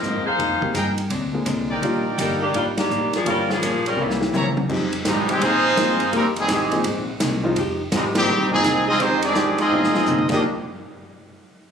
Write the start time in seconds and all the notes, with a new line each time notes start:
Already playing: C4 F4 A#4 D#5
0.02 G#2 F3 A#3 C4, hi-hat pedal
0.14 F2
0.26 D#2 D#4 G#4 C5 F5
0.38 F2 F3 A#3 D#4 G#4, kick, ride
0.61 D#3 G#3 A#3 C4 G4, muted upright bass stroke, kick
0.74 G2 F3 A#3 D#4 G#4 A#4 G5, kick, hi-hat pedal, ride
0.98 ride
1.10 D2 A#2 G#3 C4 D4, kick, ride
1.33 D3 G#3 A#3 C4 G#4
1.45 C2 A#2 G#3 C4 D4, kick, hi-hat pedal, ride
1.70 D#4 A#4 D5 G5
1.81 A#1 D#3 G3 A#3 D4 F4, kick, ride
2.18 G1 D3 D#3 G3 A#3 D4 D#4 A#4 D5 G5, kick, hi-hat pedal, ride
2.42 D#3 A#3 D4 G4
2.53 G#1 D#3 G3 A#3 D4 F4, kick, ride
2.77 D#3 A#3 D4 G4, snare, ride
2.88 A#1 D#3 G3 A#3 D4, hi-hat pedal
3.12 F3 A#3 D4 G#4, muted upright bass stroke, snare, ride
3.25 G1 G2 F3 G3 A#3 C#4 F4 A#4, kick, ride
3.29 C#4
3.50 F3 A#3 C#4 G#4, snare
3.62 A#1 G2 F3 A#3 C#4, kick, hi-hat pedal, ride
3.86 G3 C#4 F4 A#4, ride
3.97 C2 G2 A#2 C3 E3 A#3 C#4
4.01 G3 A#3 E4
4.10 snare
4.21 snare
4.33 C#2 C3 E3 A#3 C4 C#4 E4 G4 C5 C#5 A#5, hi-hat pedal, high tom
4.46 high tom
4.57 high tom
4.69 F2 F3 G#3 C4 D#4 G4, kick, crash
4.73 G4
4.93 ride
5.04 G#2 C3 D#3 F3 G3 G#3 C4 D#4 G4, kick, snare, hi-hat pedal, ride
5.27 C3 D#3 G3 G#3 C4 G4, ride
5.41 A#2 D#3 F3 G#3 C4 D#4 F4 G#4 C5, kick, ride
5.77 G2 A#2 D#3 F3 G#3 A#3 C4 D#4 G#4, kick, snare, hi-hat pedal, ride
6.00 ride
6.12 F2 F3 G3 G#3 A#3 C4 D#4 G4 A#4, kick, ride
6.36 C3 D#3 G3 G#3 C4 G#4, ride
6.48 G#1 C3 D#3 F3 G#3 C4 D#4 G4 G#4, kick, snare, hi-hat pedal, ride
6.71 F3 A#3 C4 D#4 G#4, ride
6.84 A#1 A#2 D#3 G#3 C4, kick, ride
7.20 C2 A#2 D#3 G#3 C4, kick, snare, hi-hat pedal, ride
7.43 F3 G#3 C4 D#4 F4
7.56 F1 F3 G#3 D#4 G4, kick, ride
7.92 G#1 G#2 C3 D#3 F3 G3 G#3 C4 D#4 G4, kick, snare, hi-hat pedal, ride
8.15 G#2 D#3 F3 G3 A#3 C4 D#4 G4 G#4, snare, ride
8.28 A#1 A#2 D#3 G#3
8.32 C4
8.39 G#1
8.51 F1 D#3 F3 G#3 A#3 C4 D#4 G#4
8.63 C2 A#2 D#3 G#3 C4, kick, snare, hi-hat pedal, ride
8.87 F3 G#3 C4 D#4 F4 G#4 D#5
8.99 F2 D#3 F3 G#3 C4 D#4 G4 C5, kick, ride
9.22 D#3 G#3 C4 D4 G4 G#4 D5, ride
9.35 G#2 F3 G#3 D#4 G4, kick, snare, hi-hat pedal
9.58 F3 G#3 C4 D#4 F4 G#4 D#5, ride
9.71 A#2 D#3 E3 G#3 A3 B3 C4 D4 G4
9.83 snare
9.94 F3 A#3 C4 D#4 G#4, muted upright bass stroke, snare
10.06 A#2 C3 D#3 G#3, floor tom, hi-hat pedal
10.10 C4
10.18 floor tom
10.29 D#2 D#3 F3 G3 A#3 D4 D#4 G4 D#5, kick, snare, crash
10.33 D4